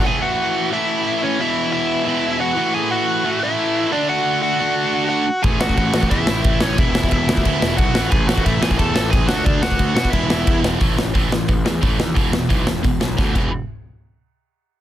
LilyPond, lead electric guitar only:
\new Staff \with { instrumentName = "Lead electric guitar" } { \time 4/4 \key a \major \tempo 4 = 178 <gis' gis''>8 <fis' fis''>4. <e' e''>4. <cis' cis''>8 | <e' e''>4 <e' e''>2 <fis' fis''>4 | <gis' gis''>8 <fis' fis''>4. <e' e''>4. <d' d''>8 | <fis' fis''>4 <fis' fis''>2 <fis' fis''>4 |
<gis' gis''>8 <fis' fis''>4. <e' e''>4. <cis' cis''>8 | <e' e''>4 <e' e''>2 <fis' fis''>4 | <gis' gis''>8 <fis' fis''>8 <e' e''>8 <gis' gis''>8 <a' a''>8 <a' a''>8 <gis' gis''>8 <fis' fis''>8 | <d' d''>8 <fis' fis''>4 <fis' fis''>8 <e' e''>4. r8 |
r1 | r1 | r1 | }